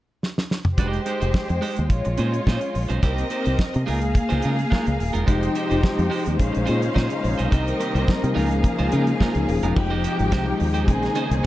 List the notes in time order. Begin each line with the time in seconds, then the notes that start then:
0.23 snare
0.38 snare
0.51 snare
0.65 mid tom
0.77 F1 G#3 D#4 G4 C5, kick, closed hi-hat
0.93 closed hi-hat
1.06 G#3 D#4 G4 C5, closed hi-hat
1.20 F1 G#3 D#4 G4 C5, closed hi-hat
1.34 kick, snare
1.48 F2, muted clean electric guitar stroke, closed hi-hat
1.61 G#3 D#4 G4 C5, open hi-hat
1.77 D#2, muted clean electric guitar stroke, closed hi-hat
1.89 A#1 G#3 F4 C#5, kick, closed hi-hat
2.05 A#1, muted clean electric guitar stroke, closed hi-hat
2.18 A#2 C#4 D#4 G#4 C5, closed hi-hat
2.33 muted clean electric guitar stroke, closed hi-hat
2.47 A#2 C#4 D#4 G#4 C5, kick, snare
2.61 muted clean electric guitar stroke, closed hi-hat
2.74 A#1, muted clean electric guitar stroke, open hi-hat
2.89 B1 C#4 D#4 G#4 C5, closed hi-hat
3.02 C2 A#3 C4 D#4 G4 A#4 C5 D#5, kick, closed hi-hat
3.18 closed hi-hat
3.30 A#3 D#4 G4 C5, closed hi-hat
3.44 C2 A#3 D#4 G4 C5, closed hi-hat
3.59 kick, snare
3.74 C3, muted clean electric guitar stroke, closed hi-hat
3.86 C#2 G#3 A#3 D#4 F4 G#4 A#4 F5, open hi-hat
4.01 muted clean electric guitar stroke, closed hi-hat
4.14 muted clean electric guitar stroke, kick, closed hi-hat
4.29 C#2 G#3 D#4 F4 C5, closed hi-hat
4.42 C#3 G#3 D#4 F4 A#4, closed hi-hat
4.58 muted clean electric guitar stroke, closed hi-hat
4.70 G#3 D#4 F4 A#4, kick, snare
4.87 C#2, muted clean electric guitar stroke, closed hi-hat
4.99 D#1, muted clean electric guitar stroke, open hi-hat
5.13 E1 G#3 D#4 F4 A#4, closed hi-hat
5.26 F1 C3 F3 G#3 D#4 G4 C5 G5, kick, closed hi-hat
5.43 closed hi-hat
5.55 G#3 D#4 G4 C5, closed hi-hat
5.70 F1 F3 G#3 D#4 G4 C5, closed hi-hat
5.83 kick, snare
5.97 F2 F3 G#3 D#4 G4, muted clean electric guitar stroke, closed hi-hat
6.10 G#3 D#4 G4 C5, open hi-hat
6.25 D#2, muted clean electric guitar stroke, closed hi-hat
6.39 A#1 C#3 G#3 A#3 C#4 D#4 C5 F5, kick, closed hi-hat
6.53 muted clean electric guitar stroke, closed hi-hat
6.57 A#1
6.66 A#2 G#3 C#4 D#4 F4 G#4 C5, closed hi-hat
6.82 muted clean electric guitar stroke, closed hi-hat
6.94 A#2 C#4 D#4 G#4 C5, kick, snare
7.10 G#3 C#4 D#4 C5, muted clean electric guitar stroke, closed hi-hat
7.24 A#1, muted clean electric guitar stroke, open hi-hat
7.38 B1 C#4 D#4 G#4 C5, closed hi-hat
7.51 C2 C3 D#3 G3 A#3 C4 D#4 G4 A#4 C5 D#5, kick, closed hi-hat
7.68 closed hi-hat
7.80 A#3 D#4 G4 C5, closed hi-hat
7.94 C2 G3 A#3 C4 D#4 G4 A#4 C5, closed hi-hat
8.08 kick, snare
8.22 C3 G3 C4 D#4 A#4, muted clean electric guitar stroke, closed hi-hat
8.34 C#2 C#3 F3 G#3 A#3 C#4 D#4 F4 G#4 A#4 F5, open hi-hat
8.50 muted clean electric guitar stroke, closed hi-hat
8.63 muted clean electric guitar stroke, kick, closed hi-hat
8.79 C#2 G#3 D#4 F4 C5, closed hi-hat
8.91 C#3 F3 G#3 C#4 D#4 F4 A#4, closed hi-hat
9.07 muted clean electric guitar stroke, closed hi-hat
9.20 G#3 D#4 F4 A#4, kick, snare
9.35 C#2 F3 C#4 D#4 G#4, muted clean electric guitar stroke, closed hi-hat
9.49 D#1, muted clean electric guitar stroke, open hi-hat
9.63 E1 G#3 D#4 F4 A#4, closed hi-hat
9.74 F1 C3 F3 G#3 D#4 G4 G5, muted clean electric guitar stroke, kick, crash
9.90 G#3 D#4 G4 C5
10.03 G#3 D#4 G4 C5, closed hi-hat
10.18 G#1 F3 G#3 D#4 G4, muted clean electric guitar stroke, closed hi-hat
10.31 C2 G#3 D#4 G4 C5, kick, snare, closed hi-hat
10.47 F3 G#3 D#4 G4, muted clean electric guitar stroke
10.59 D#2, muted clean electric guitar stroke, open hi-hat
10.74 G#3 D#4 G4 C5, closed hi-hat
10.87 A#1 C#3 D#3 A#3 C4 C#4 G#4 C5 G#5, muted clean electric guitar stroke, kick, closed hi-hat
11.03 muted clean electric guitar stroke, snare, closed hi-hat
11.15 C#4 D#4 G#4 C5, closed hi-hat
11.31 C2, muted clean electric guitar stroke, closed hi-hat